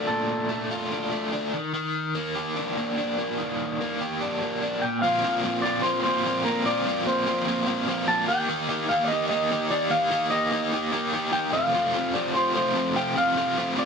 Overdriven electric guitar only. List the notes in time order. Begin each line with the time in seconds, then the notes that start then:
Already playing: A3 D4
0.07 A#2
0.49 A3
0.71 F4
0.92 D4
1.12 A3
1.33 D4
1.54 D#3
1.74 D#3
2.15 A#3
2.35 G4
2.56 D4
2.78 A#3
2.98 D4
3.18 A#3
3.38 D#3
3.81 A#3
4.01 G4
4.21 D4
4.42 A#3
4.62 D4
4.83 A#2
5.03 A#2 F3 A#3 C4 F4
5.23 A#2 F3 A#3 C4 F4
5.44 A#2 F3 A#3 C4 F4
5.64 A#2 F3 A#3 C4 F4
5.83 A#2 F3 A#3 C4 F4
6.05 A#2 F3 A#3 C4 F4
6.25 A#2 F3 A#3 C4 F4
6.46 A#2 F3 A#3 C4 F4
6.66 A#2 F3 A#3 C4 F4
6.87 A#2 F3 A#3 C4 F4
7.06 A#2 F3 A#3 C4 F4
7.27 A#2 F3 A#3 C4 F4
7.47 A#2 F3 A#3 C4 F4
7.67 A#2 F3 A#3 C4 F4
7.87 A#2 F3 A#3 C4 F4
8.07 A#2 F3 A#3 C4 F4
8.28 D#3 A#3 D#4 G4
8.48 D#3 A#3 D#4 G4
8.69 D#3 A#3 D#4 G4
8.90 D#3 A#3 D#4 G4
9.11 D#3 A#3 D#4 G4
9.31 D#3 A#3 D#4 G4
9.51 D#3 A#3 D#4 G4
9.70 D#3 A#3 D#4 G4
9.90 D#3 A#3 D#4 G4
10.10 D#3 A#3 D#4 G4
10.30 D#3 A#3 D#4 G4
10.51 D#3 A#3 D#4 G4
10.72 D#3 A#3 D#4 G4
10.92 D#3 A#3 D#4 G4
11.13 D#3 A#3 D#4 G4
11.32 D#3 A#3 D#4 G4
11.52 F2 C3 F3 A3 C4 F4
11.73 F2 C3 F3 A3 C4 F4
11.94 F2 C3 F3 A3 C4 F4
12.14 F2 C3 F3 A3 C4 F4
12.34 F2 C3 F3 A3 C4 F4
12.55 F2 C3 F3 A3 C4 F4
12.73 F2 C3 F3 A3 C4 F4
12.95 F2 C3 F3 A3 C4 F4
13.15 F2 C3 F3 A3 C4 F4
13.36 F2 C3 F3 A3 C4 F4
13.57 F2 C3 F3 A3 C4 F4
13.76 F2 C3 F3 A3 C4 F4